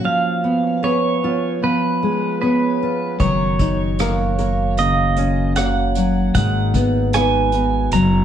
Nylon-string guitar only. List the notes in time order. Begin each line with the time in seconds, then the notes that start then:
Already playing: C#4
0.04 F3
0.44 B3
0.83 B4
1.24 F4
1.63 F3
2.03 G#3
2.42 B3
2.83 F4
3.21 F#3
3.61 D#4
4.01 A#4
4.39 A#4
4.78 C#3
5.17 C#4
5.96 F#3
6.35 G#2
6.75 B3
7.16 B4
7.54 F#4
7.93 F#3